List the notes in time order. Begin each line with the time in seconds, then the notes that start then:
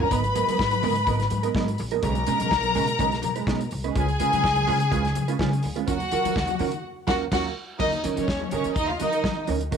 0.00 F#3 C#4 F4 A#4 A#5, floor tom
0.10 G#1 F#3 B3 D#4 A#4 B4 B5, kick, closed hi-hat, low conga
0.23 muted clean electric guitar stroke, closed hi-hat, muted conga
0.35 G#2 F#3 B3 D#4 A#4, closed hi-hat
0.47 G#2 F#3 B3 D#4 A#4, closed hi-hat, high conga
0.58 G#1, kick, snare, muted conga
0.71 muted clean electric guitar stroke, closed hi-hat, muted conga, high conga
0.82 G#2 F#3 B3 D#4 A#4, open hi-hat, low conga
0.95 muted clean electric guitar stroke, closed hi-hat
1.07 G#1 F#3 B3 D#4 A#4, kick, closed hi-hat, muted conga, low conga
1.20 muted clean electric guitar stroke, snare, closed hi-hat, muted conga
1.30 G#2, muted clean electric guitar stroke, closed hi-hat, high conga
1.43 F#3 B3 D#4 A#4, closed hi-hat
1.55 G#2 F#3 B3 D#4 A#4, kick, snare, high conga
1.68 muted clean electric guitar stroke, closed hi-hat, muted conga
1.78 A#1, muted clean electric guitar stroke, open hi-hat
1.91 F#3 B3 D#4 A#4, closed hi-hat
2.03 B1 G#3 C#4 D#4 A#4 B4 A#5, kick, closed hi-hat, muted conga, low conga
2.15 muted clean electric guitar stroke, closed hi-hat, muted conga
2.27 B2 G#3 C#4 D#4 B4, closed hi-hat
2.39 B2 G#3 C#4 D#4 B4, closed hi-hat, high conga
2.50 B1, kick, snare, muted conga
2.63 muted clean electric guitar stroke, closed hi-hat, muted conga, high conga
2.75 B2 G#3 C#4 D#4 B4, open hi-hat, low conga
2.87 muted clean electric guitar stroke, closed hi-hat
2.99 B1 G#3 C#4 D#4 B4, kick, closed hi-hat, muted conga, low conga
3.11 muted clean electric guitar stroke, snare, closed hi-hat, muted conga
3.22 B2, muted clean electric guitar stroke, closed hi-hat, high conga
3.36 G#3 C#4 D#4 B4, closed hi-hat
3.47 B2 G#3 C#4 D#4 B4, kick, snare, high conga
3.60 muted clean electric guitar stroke, closed hi-hat, muted conga
3.71 C2, muted clean electric guitar stroke, open hi-hat
3.84 G#3 C#4 D#4 B4, closed hi-hat
3.95 C#2 G#3 C#4 F4 G#4 B4 G#5, kick, closed hi-hat, muted conga, low conga
4.08 muted clean electric guitar stroke, closed hi-hat, muted conga
4.19 C#3 G#3 C#4 F4 B4, closed hi-hat
4.32 C#3 G#3 C#4 F4 B4, closed hi-hat, high conga
4.43 C#2, kick, snare, muted conga
4.56 muted clean electric guitar stroke, closed hi-hat, muted conga, high conga
4.67 C#3 G#3 C#4 F4 B4, open hi-hat, low conga
4.80 muted clean electric guitar stroke, closed hi-hat
4.91 C#2 G#3 C#4 F4 B4, kick, closed hi-hat, muted conga, low conga
5.04 muted clean electric guitar stroke, snare, closed hi-hat, muted conga
5.15 C#3, muted clean electric guitar stroke, closed hi-hat, high conga
5.28 G#3 C#4 F4 B4, closed hi-hat
5.38 C#3 G#3 C#4 F4 B4, kick, snare, high conga
5.51 muted clean electric guitar stroke, closed hi-hat
5.63 D2, muted clean electric guitar stroke, open hi-hat
5.76 G#3 C#4 F4 B4, closed hi-hat
5.87 D#2 F#3 C#4 F4 F#4 A#4 F#5, kick, closed hi-hat, low conga
6.00 muted clean electric guitar stroke, closed hi-hat, muted conga
6.11 D#3 F#3 C#4 F4 A#4, closed hi-hat
6.24 D#3 F#3 C#4 F4 A#4, closed hi-hat, high conga
6.36 D#2, kick, snare
6.47 muted clean electric guitar stroke, closed hi-hat, muted conga, high conga
6.59 D#3 F#3 C#4 F4 A#4, open hi-hat, low conga
6.72 muted clean electric guitar stroke, closed hi-hat
7.07 D#2 F#3 C#4 F4 F#4 A#4 F#5, kick, snare, crash
7.31 D#2 F#3 C#4 F4 F#4 A#4 F#5, kick, snare, crash
7.79 D#2 F#3 C#4 D#4 A#4 D#5, kick, crash, low conga
7.92 muted clean electric guitar stroke, closed hi-hat, muted conga
8.03 D#3 F#3 C#4 D#4 A#4, closed hi-hat
8.16 D#3 F#3 C#4 D#4 A#4 C#5, closed hi-hat, high conga
8.28 D#2, muted clean electric guitar stroke, kick, snare, muted conga
8.41 muted clean electric guitar stroke, muted conga, high conga
8.51 D#3 F#3 C#4 D#4 A#4 C#5, closed hi-hat, low conga
8.64 D#3 F#3 C#4 D#4 A#4, closed hi-hat
8.75 D#2 D#4 D#5, muted clean electric guitar stroke, kick, closed hi-hat, muted conga, low conga
8.88 F4 F5, muted clean electric guitar stroke, muted conga
9.00 D#3 F#3 C#4 D#4 A#4 D#5, closed hi-hat, high conga
9.13 F#3 C#4 D#4 A#4, closed hi-hat
9.24 D#3, kick, snare, high conga
9.36 muted clean electric guitar stroke, muted conga
9.47 D2 F#3 C#4 D#4 A#4, open hi-hat, high conga
9.61 muted clean electric guitar stroke, closed hi-hat
9.71 D#2 F#3 C#4 D#4 A#4, kick, closed hi-hat, muted conga, low conga